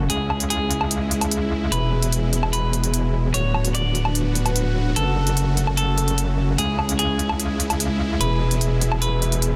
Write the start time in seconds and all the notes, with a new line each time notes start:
Already playing: C#3 C#4 F#5
0.10 C#2 G#3 E4 G#4, closed hi-hat
0.25 E5
0.30 low woodblock
0.40 closed hi-hat
0.50 G#4, closed hi-hat
0.71 closed hi-hat
0.81 low woodblock
0.91 closed hi-hat
1.11 closed hi-hat
1.21 closed hi-hat, low woodblock
1.31 closed hi-hat
1.72 E1 B2 G#3 B3 B4, closed hi-hat
2.02 closed hi-hat
2.12 closed hi-hat
2.33 closed hi-hat
2.43 low woodblock
2.53 B4, closed hi-hat
2.73 closed hi-hat
2.84 closed hi-hat
2.94 closed hi-hat
3.34 D1 D3 B3 D4 F#4 C#5, closed hi-hat
3.54 low woodblock
3.65 B4, closed hi-hat
3.75 D5, closed hi-hat
3.89 F#5
3.95 closed hi-hat
4.05 low woodblock
4.15 closed hi-hat
4.35 closed hi-hat
4.46 closed hi-hat, low woodblock
4.56 closed hi-hat
4.96 F#1 C#3 A3 C#4 A4, closed hi-hat
5.10 A4
5.27 closed hi-hat
5.37 closed hi-hat
5.57 closed hi-hat
5.67 low woodblock
5.77 A4, closed hi-hat
5.98 closed hi-hat
6.08 closed hi-hat
6.18 closed hi-hat
6.58 C#2 G#3 E4 G#4, closed hi-hat
6.79 low woodblock
6.89 G#4, closed hi-hat
6.99 G#4, closed hi-hat
7.19 closed hi-hat
7.29 E5, low woodblock
7.40 closed hi-hat
7.60 closed hi-hat
7.70 closed hi-hat, low woodblock
7.80 closed hi-hat
8.21 E1 B2 B3 B4, closed hi-hat, riser
8.51 closed hi-hat
8.61 closed hi-hat
8.81 closed hi-hat
8.92 low woodblock
9.02 B4, closed hi-hat
9.22 closed hi-hat
9.32 closed hi-hat
9.42 closed hi-hat